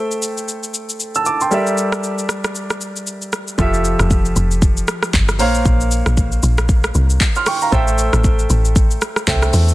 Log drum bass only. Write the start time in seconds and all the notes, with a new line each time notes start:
3.59 F1
4.00 F1
4.36 F1
5.14 G1
5.40 A#1
5.65 A#1
6.06 A#1
6.43 A#1
6.95 C2
7.72 A1
8.13 A1
8.50 A1
9.28 C2
9.53 E2